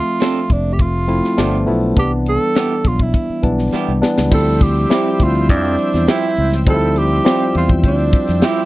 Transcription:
Already playing: F3 A3 C4 F4 E5
0.20 F3 C4 D4 A4, snare, closed hi-hat
0.50 F1 D4, kick, closed hi-hat
0.73 G4
0.79 F4, kick, closed hi-hat
1.08 F3 A3 C4 E4, closed hi-hat
1.24 snare
1.37 G1 F3 A3 B3 D4 G4, snare, closed hi-hat
1.66 B1 F3 A3 B3 E4, open hi-hat
1.96 C2 E3 G3 B3 D4 G4, kick, closed hi-hat
2.26 A4, closed hi-hat
2.55 G3 B3 E4 G4, snare, closed hi-hat
2.85 B1 F4, kick, closed hi-hat
3.00 E4, kick
3.14 kick, closed hi-hat
3.30 muted fingered electric bass stroke
3.43 B1 E3 G3 B3 D4, kick, closed hi-hat
3.59 snare
3.73 G3 B3 E4 G4, muted fingered electric bass stroke, snare
3.88 C2
4.01 E3 G3 B3 D4, snare
4.18 C#2, snare
4.31 D2 F3 G3 C4 E4 A4 C5 E5 G5 E6, kick, crash
4.47 closed hi-hat
4.61 G4, kick, closed hi-hat
4.76 closed hi-hat
4.89 F3 G3 C4 E4 G4, snare
5.05 closed hi-hat
5.20 D2 F4, kick, closed hi-hat
5.35 closed hi-hat
5.49 F2 D4, kick, closed hi-hat
5.65 closed hi-hat
5.79 closed hi-hat
5.94 E2, snare, closed hi-hat
6.08 F3 C4 E4 G4, snare
6.23 closed hi-hat
6.37 C#2, closed hi-hat
6.52 snare, closed hi-hat
6.66 D2 F3 G3 C4 D#4 A4, kick, closed hi-hat
6.74 E4
6.81 closed hi-hat
6.96 G4, closed hi-hat
7.10 closed hi-hat
7.25 F3 G3 C4 E4 F4 G4, snare
7.39 closed hi-hat
7.55 E2 F4, closed hi-hat
7.69 kick, closed hi-hat
7.84 D2 D4, kick, closed hi-hat
7.99 closed hi-hat
8.13 kick, closed hi-hat
8.28 F2, snare, closed hi-hat
8.42 F3 C4 E4 G4, snare
8.57 closed hi-hat

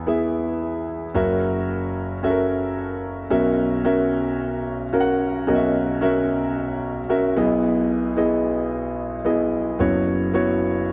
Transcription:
Already playing: E2 E3 B3 E4 G#4 E5
0.07 B3 E4 G#4 E5
1.14 F#1 F#2 C#4 F#4 A#4 E5
2.23 C#4 F#4 A4 E5
2.30 A#4
3.30 B1 B2 C#4 F#4 A#4 E5
3.85 C#4 F#4 A#4 E5
4.93 C#4 F#4 A#4 F5
5.00 F#5
5.47 B1 B2 C#4 F#4 A#4 D#5
5.55 E5
6.01 C#4 F#4 A#4 E5
7.09 C#4 F#4 A#4 E5
7.37 B1 B2 B3 E4 G#4 D#5
8.17 B3 E4 G#4 D#5
9.25 B3 E4 G#4 D#5
9.79 F#1 F#2 B3 E4 F#4 C#5
10.34 B3 E4 F#4 C#5

